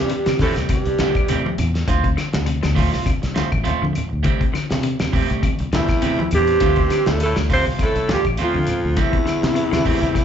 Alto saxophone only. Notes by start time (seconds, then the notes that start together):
Already playing: G4
0.42 A4
0.73 G4
5.75 E4
6.35 G4
7.10 A4
7.23 A4
7.54 C5
7.85 A4
8.14 G4
8.44 F4
9.01 E4